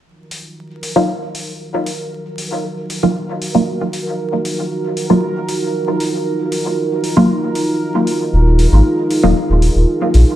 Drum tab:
HH |-o-o-o-o|-o-o-o-o|-o-o-o-o|-o-o-o-o|

HH |-o-o-o-o|